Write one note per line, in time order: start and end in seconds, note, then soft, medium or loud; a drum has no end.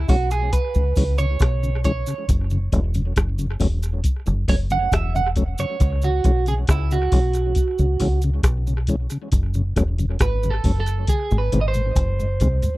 0.08 0.51 B1 medium
0.08 0.16 E3 medium
0.08 0.16 G#3 medium
0.08 0.16 C#4 medium
0.08 0.30 F#4 loud
0.08 kick loud
0.08 open hi-hat medium
0.08 cabasa soft
0.31 0.52 G#4 medium
0.31 closed hi-hat medium
0.31 cabasa medium
0.53 1.18 B4 loud
0.53 kick loud
0.53 closed hi-hat medium
0.53 cabasa medium
0.74 0.96 C#2 medium
0.74 0.82 C#3 soft
0.74 cabasa medium
0.96 1.38 C#2 medium
0.96 1.04 E3 medium
0.96 1.04 G#3 medium
0.96 1.04 C#4 medium
0.96 kick loud
0.96 open hi-hat medium
0.96 cabasa medium
1.18 1.26 C#3 medium
1.18 1.80 C#5 loud
1.18 closed hi-hat medium
1.18 cabasa medium
1.40 2.03 B1 loud
1.40 kick medium
1.40 cross-stick loud
1.40 closed hi-hat loud
1.40 cabasa medium
1.63 1.70 C#3 medium
1.63 cabasa medium
1.84 1.92 E3 medium
1.84 1.92 G#3 medium
1.84 1.92 C#4 medium
1.84 2.26 C#5 loud
1.84 kick medium
1.84 closed hi-hat medium
1.84 cabasa medium
2.06 2.14 C#3 medium
2.06 closed hi-hat soft
2.06 cabasa medium
2.29 2.70 F#1 loud
2.29 kick loud
2.29 closed hi-hat medium
2.29 cabasa medium
2.50 2.58 F#2 medium
2.50 2.58 C#3 medium
2.50 cabasa medium
2.72 3.14 E1 loud
2.72 2.80 F#3 medium
2.72 2.80 A3 medium
2.72 2.80 C#4 medium
2.72 kick loud
2.72 closed hi-hat medium
2.72 cabasa medium
2.94 3.02 F#2 medium
2.94 3.02 C#3 medium
2.94 closed hi-hat medium
2.94 cabasa medium
3.16 3.58 F#1 medium
3.16 kick loud
3.16 cross-stick loud
3.16 closed hi-hat medium
3.16 cabasa medium
3.39 3.46 F#2 medium
3.39 3.46 C#3 medium
3.39 cabasa medium
3.60 4.02 E1 medium
3.60 3.67 F#3 medium
3.60 3.67 A3 medium
3.60 3.68 C#4 medium
3.60 kick medium
3.60 open hi-hat medium
3.60 cabasa soft
3.83 closed hi-hat medium
3.83 cabasa medium
4.04 kick loud
4.04 closed hi-hat medium
4.04 cabasa medium
4.26 4.48 F#1 loud
4.26 4.34 F#2 medium
4.26 4.34 C#3 soft
4.26 cabasa soft
4.48 4.90 F#1 medium
4.48 4.55 F#3 medium
4.48 4.56 A3 medium
4.48 4.56 C#4 medium
4.48 4.55 C#5 loud
4.48 kick loud
4.48 open hi-hat medium
4.48 cabasa soft
4.70 4.78 F#2 medium
4.70 4.78 C#3 medium
4.70 4.91 F#5 loud
4.70 closed hi-hat medium
4.70 cabasa medium
4.92 5.55 E1 loud
4.92 5.16 E5 loud
4.92 kick loud
4.92 cross-stick loud
4.92 closed hi-hat medium
4.92 cabasa medium
5.15 5.22 F#2 medium
5.15 5.22 C#3 medium
5.15 5.28 F#5 loud
5.15 cabasa soft
5.36 5.43 F#3 medium
5.36 5.44 A3 medium
5.36 5.44 C#4 medium
5.36 kick medium
5.36 closed hi-hat medium
5.36 cabasa medium
5.58 5.66 F#2 medium
5.58 5.66 C#3 medium
5.58 6.05 C#5 medium
5.58 closed hi-hat soft
5.58 cabasa medium
5.80 6.22 C#2 loud
5.80 kick loud
5.80 closed hi-hat medium
5.80 cabasa medium
6.02 6.10 C#3 medium
6.02 6.44 F#4 medium
6.02 cabasa medium
6.24 6.66 B1 medium
6.24 6.32 E3 medium
6.24 6.32 G#3 medium
6.24 6.32 C#4 medium
6.24 kick loud
6.24 closed hi-hat medium
6.24 cabasa medium
6.46 6.54 C#3 medium
6.46 6.54 G#4 medium
6.46 closed hi-hat medium
6.46 cabasa medium
6.67 7.10 C#2 medium
6.67 6.92 E4 medium
6.67 kick loud
6.67 cross-stick loud
6.67 closed hi-hat medium
6.67 cabasa medium
6.91 6.98 C#3 medium
6.91 8.19 F#4 medium
6.91 cabasa medium
7.12 7.54 B1 medium
7.12 7.19 E3 medium
7.12 7.20 G#3 medium
7.12 7.20 C#4 medium
7.12 kick loud
7.12 open hi-hat medium
7.12 cabasa soft
7.33 closed hi-hat medium
7.33 cabasa medium
7.55 kick loud
7.55 closed hi-hat medium
7.55 cabasa medium
7.78 7.99 C#2 medium
7.78 7.86 C#3 medium
7.78 cabasa medium
8.00 8.42 C#2 medium
8.00 8.08 E3 medium
8.00 8.08 G#3 medium
8.00 8.08 C#4 medium
8.00 kick loud
8.00 open hi-hat medium
8.00 cabasa soft
8.22 8.30 C#3 medium
8.22 closed hi-hat medium
8.22 cabasa medium
8.43 9.07 B1 medium
8.43 kick loud
8.43 cross-stick loud
8.43 closed hi-hat medium
8.43 cabasa medium
8.67 8.74 C#3 soft
8.67 cabasa soft
8.87 8.96 E3 medium
8.87 8.96 G#3 medium
8.87 8.96 C#4 loud
8.87 kick medium
8.87 closed hi-hat medium
8.87 cabasa medium
9.10 9.18 C#3 medium
9.10 closed hi-hat soft
9.10 cabasa medium
9.32 9.74 F#1 medium
9.32 kick loud
9.32 closed hi-hat medium
9.32 cabasa medium
9.54 9.62 F#2 medium
9.54 9.62 C#3 medium
9.54 cabasa medium
9.76 10.18 E1 medium
9.76 9.83 F#3 medium
9.76 9.83 A3 medium
9.76 9.84 C#4 medium
9.76 kick loud
9.76 cross-stick medium
9.76 closed hi-hat medium
9.76 cabasa medium
9.98 10.06 F#2 medium
9.98 10.06 C#3 medium
9.98 closed hi-hat medium
9.98 cabasa medium
10.19 10.62 G#1 medium
10.19 10.51 B4 medium
10.19 kick loud
10.19 cross-stick loud
10.19 closed hi-hat medium
10.19 cabasa medium
10.43 10.50 F#2 medium
10.43 10.50 C#3 medium
10.43 cabasa medium
10.50 10.79 A4 loud
10.64 11.06 F#1 medium
10.64 10.72 F#3 medium
10.64 10.72 A3 medium
10.64 10.72 C#4 medium
10.64 kick loud
10.64 open hi-hat medium
10.64 cabasa soft
10.80 11.09 A4 medium
10.86 closed hi-hat medium
10.86 cabasa medium
11.07 11.36 G#4 medium
11.07 kick loud
11.07 closed hi-hat medium
11.07 high tom medium
11.07 cabasa medium
11.31 11.52 G#1 medium
11.31 11.38 G#2 medium
11.31 cabasa soft
11.38 11.61 B4 medium
11.52 11.94 G#1 loud
11.52 11.60 D#3 medium
11.52 11.60 G#3 medium
11.52 11.60 C4 medium
11.52 closed hi-hat loud
11.52 mid tom medium
11.52 cabasa medium
11.61 11.67 D#5 medium
11.68 12.77 C5 loud
11.74 11.82 G#2 medium
11.74 closed hi-hat medium
11.74 mid tom medium
11.74 cabasa medium
11.95 12.38 F#1 loud
11.95 kick loud
11.95 closed hi-hat medium
11.95 mid tom medium
11.95 cabasa medium
12.20 12.26 G#2 medium
12.20 cabasa medium
12.40 12.62 C2 loud
12.40 12.48 D#3 medium
12.40 12.48 G#3 medium
12.40 12.48 C4 medium
12.40 closed hi-hat medium
12.40 floor tom medium
12.40 cabasa medium
12.62 12.70 G#2 medium
12.62 closed hi-hat soft
12.62 floor tom medium
12.62 cabasa medium